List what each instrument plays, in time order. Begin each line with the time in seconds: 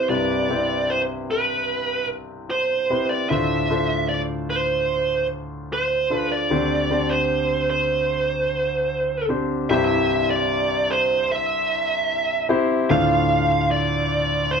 Already playing: grand piano C4 E4 G4 B4
0.09 grand piano C2 G2 C4 E4 G4 B4, lead electric guitar D5
0.50 grand piano C4 E4 G4
0.90 lead electric guitar C5
1.31 lead electric guitar B4
2.51 lead electric guitar C5
2.90 grand piano C4 E4 G4 B4
3.09 lead electric guitar D5
3.30 grand piano D2 A2 D4 F4 A4 C5, lead electric guitar E5
3.70 grand piano D4 F4 A4 C5
4.09 lead electric guitar D5
4.50 lead electric guitar C5
5.73 lead electric guitar C5
6.10 grand piano D4 F4 A4 C5
6.16 lead electric guitar B4
6.32 lead electric guitar D5
6.50 grand piano D2 D3 C4 D4 G4 C5
6.91 grand piano C4 D4 G4 C5
7.10 lead electric guitar C5
7.70 lead electric guitar C5
9.29 grand piano C4 D4 G4 C5
9.70 grand piano C2 G2 C4 E4 G4 C5, lead electric guitar E5
10.31 lead electric guitar D5
10.91 lead electric guitar C5
11.32 lead electric guitar E5
12.49 grand piano C4 E4 G4 C5
12.90 grand piano D2 A2 D4 F4 A4 C5, lead electric guitar F5
13.71 lead electric guitar D5
14.51 lead electric guitar C5